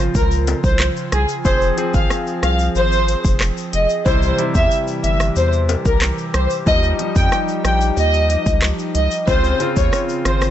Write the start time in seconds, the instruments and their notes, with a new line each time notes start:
Already playing: grand piano C#3 C4 F4, analog synth pad F3 F4
0.15 analog synth bass C#2, violin section A#4, kick, shaker
0.31 shaker
0.47 closed hi-hat, high timbale, shaker
0.64 analog synth bass C2, violin section C5, kick, shaker
0.80 cross-stick, clap, shaker
0.96 shaker
1.12 analog synth bass C2, violin section G#4, cross-stick, closed hi-hat, shaker
1.28 shaker
1.45 analog synth bass F1, grand piano F3 C4 G#4, analog synth pad F3 G#4, violin section C5, kick, shaker
1.61 shaker
1.77 grand piano F3 C4 G#4, closed hi-hat, shaker
1.94 analog synth bass G#1, violin section F5, kick, shaker
2.10 cross-stick, shaker
2.27 shaker
2.43 analog synth bass C2, violin section F5, cross-stick, closed hi-hat, shaker
2.59 shaker
2.75 analog synth bass G#1, violin section C5, shaker
2.92 shaker
3.08 closed hi-hat, shaker
3.24 analog synth bass F1, kick, shaker
3.41 cross-stick, clap, shaker
3.57 shaker
3.73 analog synth bass F1, violin section D#5, closed hi-hat, shaker
3.89 shaker
4.06 analog synth bass C2, grand piano C3 G3 E4, analog synth pad E3 G4, violin section C5, kick, shaker
4.22 shaker
4.38 grand piano C3 G3 E4, closed hi-hat, shaker
4.55 analog synth bass E2, violin section E5, kick, shaker
4.71 shaker
4.87 shaker
5.04 analog synth bass G1, violin section E5, closed hi-hat, shaker
5.20 cross-stick, shaker
5.36 analog synth bass E2, violin section C5, shaker
5.53 shaker
5.69 closed hi-hat, high timbale, shaker
5.85 analog synth bass C2, violin section A#4, kick, shaker
6.02 cross-stick, clap, shaker
6.18 shaker
6.34 analog synth bass C2, violin section C5, cross-stick, closed hi-hat, shaker
6.50 shaker
6.66 analog synth bass D#2, grand piano F3 G3 D#4, analog synth pad F3 D#4, violin section D#5, kick, shaker
6.83 shaker
6.99 grand piano F3 G3 D#4, closed hi-hat, shaker
7.15 analog synth bass F2, violin section G5, kick, shaker
7.32 cross-stick, shaker
7.48 shaker
7.65 analog synth bass A#1, violin section G5, cross-stick, closed hi-hat, shaker
7.81 shaker
7.97 analog synth bass D#2, violin section D#5, shaker
8.14 shaker
8.30 closed hi-hat, shaker
8.46 analog synth bass C#2, kick, shaker
8.62 cross-stick, clap, shaker
8.79 shaker
8.95 analog synth bass C#2, violin section D#5, closed hi-hat, shaker
9.11 shaker
9.27 analog synth bass C#2, grand piano C#3 C4 F4, analog synth pad C#3 C4 F4, violin section C5, kick, shaker
9.44 shaker
9.60 grand piano C#3 C4 F4, closed hi-hat, shaker
9.76 analog synth bass D#2, violin section C#5, kick, shaker
9.93 cross-stick, shaker
10.09 shaker
10.25 analog synth bass G#1, violin section C5, cross-stick, closed hi-hat, shaker
10.41 cross-stick, shaker